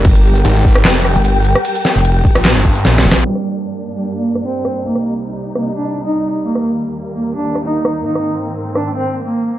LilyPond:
<<
  \new Staff \with { instrumentName = "Cello" } { \time 4/4 \key g \phrygian \tempo 4 = 150 r1 | r1 | g8 r4 r16 g16 r16 bes8 r16 c'8. r16 | bes8 r4 r16 bes16 r16 d'8 r16 ees'8. r16 |
bes8 r4 r16 bes16 r16 d'8 r16 ees'8. r16 | ees'8 r4 r16 d'16 r16 c'8 r16 bes8. r16 | }
  \new Staff \with { instrumentName = "String section" } { \clef bass \time 4/4 \key g \phrygian << { <g bes' g''>1~ | <g bes' g''>1 | <g, bes d'>1 | <c, ees'>1 |
<ees, bes>1 | <aes, c'>1 | } \\ { g'1~ | g'1 | g1 | c1 |
ees1~ | ees1 | } >> }
  \new Staff \with { instrumentName = "Detuned saw bass" } { \clef bass \time 4/4 \key g \phrygian r4 aes,,4 f,,8. r4 r16 | r4. r16 bes,,8 g,,8. bes,,8 r16 bes,,16 | r1 | r1 |
r1 | r1 | }
  \new Staff \with { instrumentName = "Wobble bass" } { \clef bass \time 4/4 \key g \phrygian g,,4 r4. r16 g,,4 r16 | r8. f,,4 r4. r16 f,,16 r16 | r1 | r1 |
r1 | r1 | }
  \new DrumStaff \with { instrumentName = "Drums" } \drummode { \time 4/4 <cymc hh bd>16 hh8 hh16 <cymc hh>8 bd16 ss16 <hc cymc hh sn>8 ss16 hh16 <cymc hh>8 hh16 ss16 | <cymc hh>16 hh16 sn16 hh16 <cymc hh>8 bd16 ss16 <hc cymc hh sn>8 bd16 hh16 \tuplet 3/2 { <cymc hh sn>16 r16 sn16 hh16 sn16 r16 } | cymc16 ss8. r4 r8. ss16 r8 ss8 | r16 ss8. r8. ss16 r4 r4 |
r16 ss8. r4 r8. ss16 r8 ss8 | r16 ss8. r8. ss16 r4 r4 | }
>>